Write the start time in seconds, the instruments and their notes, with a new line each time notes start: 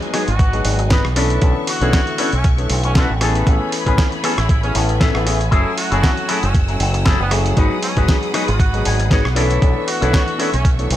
Already playing: grand piano F#3 G#3 B3 D#4 G#4, string section F#4 B4 D#5 G#5
0.02 closed hi-hat
0.13 grand piano F#3 G#3 B3 D#4 G#4, clean electric guitar B3 D#4 F#4 G#4, cross-stick, open hi-hat
0.28 fingered electric bass G#1, trumpet section F#4, closed hi-hat
0.39 muted clean electric guitar stroke, kick, closed hi-hat
0.53 grand piano F#3 G#3 B3 D#4 G#4, closed hi-hat
0.64 fingered electric bass G#1, muted clean electric guitar stroke, open hi-hat
0.78 muted clean electric guitar stroke, closed hi-hat
0.90 grand piano F#3 G#3 B3 D#4 B4, clean electric guitar B3 D#4 F#4 B4, kick, snare, closed hi-hat
1.05 fingered electric bass B1, cross-stick
1.16 grand piano E3 B3 C#4 D4 A4, string section A3 E5 C#6, clean electric guitar C#4 D4 E4 A4, open hi-hat
1.30 closed hi-hat
1.41 fingered electric bass B1, grand piano D3 E3 B3 A4 C#5, kick, closed hi-hat
1.67 trumpet section F#4, open hi-hat
1.81 fingered electric bass B1, grand piano D3 E3 A3 B3 C#5, clean electric guitar C#4 D4 E4 G#4, closed hi-hat
1.93 kick, snare, closed hi-hat
2.07 closed hi-hat
2.18 grand piano E3 B3 C#4 D4 A4, clean electric guitar C#4 D4 E4 A4, open hi-hat
2.33 fingered electric bass B1, trumpet section C#4, closed hi-hat
2.44 muted clean electric guitar stroke, kick, closed hi-hat
2.58 grand piano D3 E3 B3 A4 C#5, closed hi-hat
2.70 fingered electric bass B1, muted clean electric guitar stroke, open hi-hat
2.83 trumpet section C#4, muted clean electric guitar stroke, closed hi-hat
2.95 grand piano E3 B3 C#4 D4 B4, clean electric guitar C#4 D4 E4 A4, trumpet section F#4, kick, snare, closed hi-hat
3.10 fingered electric bass A1
3.21 grand piano E3 A3 B3 C#4 G#4, clean electric guitar B3 C#4 G#4 A4, string section C#5 G#5 B5, cross-stick, open hi-hat
3.35 closed hi-hat
3.47 fingered electric bass A1, grand piano E3 A3 B3 C#4 G#5, kick, closed hi-hat
3.72 open hi-hat
3.86 fingered electric bass A1, grand piano E3 A3 B3 C#4 G#5, clean electric guitar B3 C#4 G#4 B4, kick, closed hi-hat
3.98 kick, snare, closed hi-hat
4.12 closed hi-hat
4.23 grand piano E3 A3 B3 C#4 G#4, clean electric guitar B3 C#4 G#4 A4, cross-stick, open hi-hat
4.37 fingered electric bass A1, trumpet section E4, cross-stick, closed hi-hat
4.49 trumpet section E4, muted clean electric guitar stroke, kick, closed hi-hat
4.63 grand piano E3 A3 B3 C#4 G#4, trumpet section C#4, closed hi-hat
4.75 fingered electric bass A1, grand piano E3 A3 B3 C#4, trumpet section C#4, clean electric guitar A5, muted clean electric guitar stroke, open hi-hat
4.89 muted clean electric guitar stroke, closed hi-hat
5.00 clean electric guitar B3 C#4 G#4 A4 E5, kick, snare, closed hi-hat
5.14 fingered electric bass A1, grand piano E3 A3 B3 C#4 A4, cross-stick
5.26 grand piano E3 A3 B3 C#4 G#4, muted clean electric guitar stroke, open hi-hat
5.39 muted clean electric guitar stroke, closed hi-hat
5.51 fingered electric bass F#1, grand piano F#3 A3 C#4 E4 G#5, string section A3 F#5 E6, clean electric guitar E4 F#4 G#4 A4, kick, closed hi-hat
5.78 trumpet section F#4, open hi-hat
5.91 fingered electric bass F#1, grand piano F#3 A3 C#4 E4 G#5, clean electric guitar E4 F#4 G#4 A4, closed hi-hat
6.03 kick, snare, closed hi-hat
6.17 closed hi-hat
6.28 grand piano F#3 A3 C#4 E4 G#4, clean electric guitar E4 F#4 G#4 A4, open hi-hat
6.43 fingered electric bass F#1, trumpet section C#4, closed hi-hat
6.54 muted clean electric guitar stroke, kick, closed hi-hat
6.68 grand piano F#3 A3 C#4 E4 G#5, closed hi-hat
6.79 fingered electric bass F#1, muted clean electric guitar stroke, open hi-hat
6.93 muted clean electric guitar stroke, closed hi-hat
7.05 grand piano F#3 A3 C#4 E4 A4, clean electric guitar E4 F#4 G#4 A4, kick, snare, closed hi-hat
7.20 fingered electric bass F#1, trumpet section B3
7.31 grand piano F#3 A3 C#4 E4 G#4, muted clean electric guitar stroke, cross-stick, open hi-hat
7.45 muted clean electric guitar stroke, closed hi-hat
7.57 fingered electric bass G#1, grand piano F#3 G#3 B3 D#4 G#4, clean electric guitar D#4 F#4 G#4 B4, string section G#4 B5 D#6, kick, closed hi-hat
7.83 trumpet section C#4, open hi-hat
7.96 fingered electric bass G#1, grand piano F#3 G#3 B3 D#4 G#4, clean electric guitar D#4 F#4 G#4 B4, kick, closed hi-hat
8.08 kick, snare, closed hi-hat
8.23 closed hi-hat
8.34 grand piano F#3 G#3 B3 D#4 G#4, clean electric guitar D#4 F#4 G#4 B4, cross-stick, open hi-hat
8.48 fingered electric bass G#1, trumpet section F#4, closed hi-hat
8.59 muted clean electric guitar stroke, kick, closed hi-hat
8.73 grand piano F#3 G#3 B3 D#4 G#4, closed hi-hat
8.85 fingered electric bass G#1, clean electric guitar G#5, muted clean electric guitar stroke, open hi-hat
8.99 muted clean electric guitar stroke, closed hi-hat
9.10 grand piano F#3 G#3 B3 D#4 B4, clean electric guitar D#4 F#4 G#4 C#5 F#5, kick, snare, closed hi-hat
9.25 fingered electric bass B1, cross-stick
9.35 grand piano E3 B3 C#4 D4 A4, string section A3 E5 C#6, clean electric guitar D4 E4 A4 C#5 D5, open hi-hat
9.50 closed hi-hat
9.61 fingered electric bass B1, grand piano E3 B3 D4 A4, kick, closed hi-hat
9.88 trumpet section F#4, open hi-hat
10.01 fingered electric bass B1, grand piano E3 B3 D4 A4, clean electric guitar D4 E4 A4 C#5, closed hi-hat
10.14 kick, snare, closed hi-hat
10.28 closed hi-hat
10.39 grand piano E3 B3 C#4 D4 A4, clean electric guitar D4 E4 A4 C#5, open hi-hat
10.53 fingered electric bass B1, trumpet section C#4, closed hi-hat
10.64 muted clean electric guitar stroke, kick, closed hi-hat
10.78 grand piano E3 B3 D4 A4 C#5, closed hi-hat
10.90 fingered electric bass B1, muted clean electric guitar stroke, open hi-hat